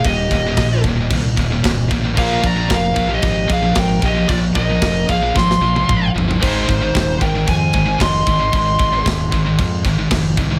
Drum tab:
CC |x-x-x-x-x-x-x-x-|x-x-x-x-x-x-x-x-|x-x-x-x---------|x-x-x-x-x-x-x-x-|
SD |----o-------o---|----o-------o---|----o---oo------|----o-------o---|
T1 |----------------|----------------|-----------o----|----------------|
T2 |----------------|----------------|------------o---|----------------|
FT |----------------|----------------|--------------oo|----------------|
BD |o-o-o-o-o-o-o-o-|o-o-o-o-o-o-o-o-|o-o-o-o-o---o---|o-o-o-o-o-o-o-o-|

CC |x-x-x-x-x-x-x-x-|
SD |----o-------o---|
T1 |----------------|
T2 |----------------|
FT |----------------|
BD |o-o-o-o-o-o-o-o-|